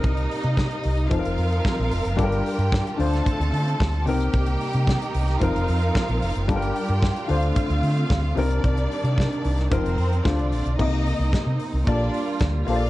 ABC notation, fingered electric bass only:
X:1
M:4/4
L:1/16
Q:1/4=112
K:Cdor
V:1 name="Fingered electric bass" clef=bass
C,,2 z C,2 z C,,2 F,,, F,,, F,,2 z B,,, F,,, ^F,,, | G,,,2 z G,,2 z D,,2 z D,, D,2 D,,2 C,,2 | C,,2 z C,2 z C,,2 F,,, F,,, F,,2 z B,,, F,,, ^F,,, | G,,,2 z G,,2 z D,,2 z D,, D,2 D,,2 C,,2 |
C,,2 z C,2 z C,,2 F,,, F,,, F,,2 D,, C,, B,,, =B,,, | C,,3 C,, z C, z C,, B,,,2 z2 D,,2 B,,,2 |]